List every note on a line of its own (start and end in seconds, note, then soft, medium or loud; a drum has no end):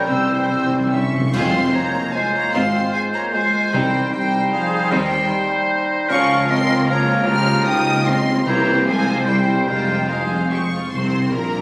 0.00 1.10 G3 medium
0.00 1.13 G5 medium
0.08 1.13 C2 medium
0.08 1.13 C3 medium
0.08 0.16 C3 soft
0.08 0.29 G3 soft
0.08 1.13 C4 medium
0.08 0.91 C4 medium
0.08 0.29 G4 soft
0.08 0.93 C5 medium
0.08 0.91 E6 medium
0.08 0.28 E6 soft
0.24 0.31 C3 soft
0.29 0.39 C3 soft
0.29 0.50 E3 soft
0.29 0.51 E4 soft
0.29 0.51 C6 soft
0.40 0.47 C3 soft
0.48 0.56 C3 soft
0.48 0.70 C3 medium
0.48 0.72 E6 soft
0.57 0.63 C3 soft
0.64 0.71 C3 soft
0.71 0.78 C3 medium
0.71 1.12 G3 medium
0.71 0.92 C6 soft
0.79 0.86 C3 medium
0.87 0.94 C3 medium
0.91 1.01 C3 medium
0.91 1.31 C#4 medium
0.91 1.30 E5 medium
0.91 1.31 C#6 medium
0.91 1.11 E6 soft
1.03 1.10 C3 medium
1.11 1.18 C3 medium
1.11 1.34 F3 medium
1.11 1.31 C6 medium
1.19 1.25 C3 medium
1.26 1.33 C3 medium
1.33 1.67 F1 medium
1.33 1.68 F1 medium
1.33 1.91 F2 medium
1.33 1.68 F2 medium
1.33 1.53 G#3 medium
1.33 2.11 G#3 medium
1.33 1.74 C4 medium
1.33 2.11 F4 medium
1.33 1.53 F4 medium
1.33 1.53 G#4 medium
1.33 2.10 C5 medium
1.33 1.53 C5 medium
1.33 1.75 F5 medium
1.33 1.74 C6 loud
1.33 concert bass drum medium
1.33 crash medium
1.73 2.15 A#3 medium
1.73 2.14 C#5 medium
1.73 2.14 A#5 loud
2.14 2.34 G#3 medium
2.14 2.54 G#3 medium
2.14 2.53 F4 medium
2.14 2.20 C5 medium
2.14 2.54 C5 medium
2.14 2.34 G#5 medium
2.33 2.54 A#3 medium
2.33 2.55 C#5 medium
2.33 2.54 A#5 medium
2.53 2.87 G#1 medium
2.53 2.87 G#2 medium
2.53 2.73 G#3 medium
2.53 3.33 G#3 medium
2.53 2.73 C4 medium
2.53 2.94 C4 medium
2.53 3.32 F4 medium
2.53 2.73 F4 medium
2.53 2.73 C5 medium
2.53 3.32 C5 medium
2.53 2.93 F5 medium
2.53 2.94 C6 loud
2.93 3.14 G#3 medium
2.93 3.00 C5 medium
2.93 3.01 G#5 loud
3.13 3.34 A#3 medium
3.13 3.33 C#5 medium
3.13 3.22 A#5 medium
3.33 3.75 G#3 medium
3.33 3.74 G#3 medium
3.33 3.72 F4 medium
3.33 3.72 C5 medium
3.33 3.73 C5 medium
3.33 3.72 G#5 medium
3.72 4.06 C2 medium
3.72 4.06 C3 medium
3.72 4.29 C3 medium
3.72 3.92 G3 medium
3.72 4.13 G3 medium
3.72 4.14 G3 medium
3.72 3.92 C4 medium
3.72 3.91 D#4 medium
3.72 4.12 D#4 medium
3.72 3.91 C5 medium
3.72 4.12 C5 medium
3.72 4.11 G5 medium
4.12 4.90 G3 medium
4.12 4.52 G3 medium
4.12 4.90 D#4 medium
4.12 4.53 C5 medium
4.12 4.90 C5 medium
4.12 4.51 G5 medium
4.51 4.92 F3 medium
4.51 4.92 G#4 medium
4.51 4.90 F5 medium
4.91 5.25 D#2 medium
4.91 5.25 D#3 medium
4.91 5.10 G3 medium
4.91 6.08 G3 medium
4.91 5.52 G3 medium
4.91 5.10 C4 medium
4.91 6.07 D#4 medium
4.91 5.10 D#4 medium
4.91 5.51 C5 medium
4.91 5.10 C5 medium
4.91 6.11 C5 medium
4.91 5.51 G5 loud
6.09 8.42 C#2 medium
6.09 8.42 C#3 medium
6.09 7.24 F3 medium
6.09 6.88 F3 medium
6.09 7.24 C#4 medium
6.09 6.47 C#4 loud
6.09 6.87 F4 medium
6.09 8.42 F4 medium
6.09 6.88 A#4 medium
6.09 7.24 A#4 medium
6.09 6.51 F5 loud
6.09 6.47 C#6 loud
6.49 6.88 C4 loud
6.49 6.89 D#5 loud
6.49 6.88 C6 loud
6.88 7.28 F3 medium
6.88 7.27 A#3 loud
6.88 7.29 F4 medium
6.88 7.27 A#4 medium
6.88 7.28 C#5 medium
6.88 7.27 A#5 medium
7.27 8.17 F3 medium
7.27 8.42 G3 medium
7.27 8.42 A#3 medium
7.27 7.67 F4 loud
7.27 8.18 G4 medium
7.27 8.42 G4 medium
7.27 8.16 A#4 medium
7.27 7.66 A#5 loud
7.27 7.66 F6 loud
7.66 8.06 D#4 loud
7.66 8.08 G5 loud
7.66 8.06 D#6 loud
8.06 8.46 C4 loud
8.06 8.45 D#5 loud
8.06 8.46 C6 loud
8.45 9.63 C2 medium
8.45 9.63 C3 medium
8.45 8.84 C3 medium
8.45 8.87 E3 medium
8.45 8.83 G3 medium
8.45 8.85 A#3 medium
8.45 8.83 C4 medium
8.45 8.84 E4 medium
8.45 8.88 G4 medium
8.45 8.84 G4 medium
8.45 8.84 C5 medium
8.45 8.85 C#5 medium
8.45 8.86 A#5 medium
8.86 9.26 F3 medium
8.86 9.26 G#3 medium
8.86 9.25 C4 medium
8.86 9.28 F4 medium
8.86 9.27 F4 medium
8.86 9.25 C5 medium
8.86 9.27 C5 medium
8.86 9.25 G#5 loud
9.26 9.66 G3 medium
9.26 9.67 G3 medium
9.26 9.70 G3 medium
9.26 9.67 C4 medium
9.26 9.67 E4 medium
9.26 9.68 E4 medium
9.26 9.66 C5 medium
9.26 9.68 C5 medium
9.26 9.66 C5 medium
9.26 9.66 G5 medium
9.67 10.69 F1 medium
9.67 10.25 F2 medium
9.67 10.69 F2 medium
9.67 10.08 G3 medium
9.67 10.08 G#3 medium
9.67 10.09 G#3 medium
9.67 10.08 C4 medium
9.67 10.08 F4 medium
9.67 10.08 A#4 medium
9.67 10.08 C5 medium
9.67 10.08 G5 medium
10.08 10.71 F3 medium
10.08 10.70 G#3 medium
10.08 10.70 C4 medium
10.08 10.70 F4 medium
10.08 10.70 G#4 medium
10.08 10.16 A#4 medium
10.08 10.70 C5 medium
10.08 10.50 F5 medium
10.29 10.37 G#4 medium
10.49 10.57 G4 medium
10.49 10.89 C#6 medium
10.70 10.91 F4 medium
10.91 11.33 C2 medium
10.91 11.29 C2 medium
10.91 11.29 C3 medium
10.91 11.29 C4 medium
10.91 11.29 C5 medium
10.91 11.31 C6 medium
11.31 11.62 A#1 medium
11.31 11.62 A#2 medium
11.31 11.62 A#3 medium
11.31 11.62 A#4 medium
11.31 11.62 A#5 medium